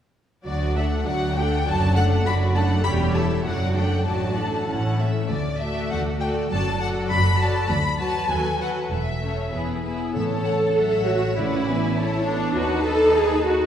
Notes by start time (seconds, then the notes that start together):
0.44 D2 F#3 F#4 D5
0.75 A3 D4 A4 E5 F#5
1.06 D2 F#3 F#4 D5 F#5
1.36 A3 D4 A4 F#5 G5
1.66 F#1 F#2 F#3 F#4 D5 A5
1.95 A3 D4 A4 F#5
2.26 F#1 F#2 F#3 F#4 D5 B5
2.55 A3 D4 A4 F#5 A5
2.84 E1 E2 G3 G4 C#5 B5
3.15 A3 E4 A4 E5 A5
3.44 F#1 F#2 F#3 F#4 D5 F#5
3.75 A3 D4 A4 F#5 G5
4.05 A1 A2 F#3 F#4 D5 A5
4.37 A3 D4 A4 F#5
4.68 A1 A2 C#4 E4 F#5
4.99 A3 C#4 E5
5.29 D2 D5
5.60 A3 F#4 A4 D5 E5
5.91 D2 F#5
6.20 A3 F#4 A4 D5 G5
6.51 F#1 F#2 F#3 F#4 A4 D5 A5
6.80 F#3 F#4 A4 D5 F#5
7.10 F#1 F#2 B5
7.39 F#3 F#4 A4 D5 A5
7.69 D2 B5
7.99 F#3 F#4 B4 A5
8.29 D#2 F#3 F#4 A4 B4 G#5
8.60 F#3 F#4 A4 B4 F#5
8.91 E1 E2 E5
9.22 A3 C#4 A4 C#5
9.52 E1 E2 B3 E4 G#4 B4
9.84 B3 E4 G#4 B4
10.15 A1 A2 A4 C#5 E5 A5
10.45 F#5
10.76 F#3 C#5 E5 F#5
11.07 A3 F#4
11.38 A2 C#4 E4 B4 D5 F#5
11.69 B3 G#5
11.97 A3 A4 C#5 A5
12.27 B3 D4
12.56 D#2 D#4 F#4 B4 A5
12.87 A4
13.17 G#4
13.46 F#4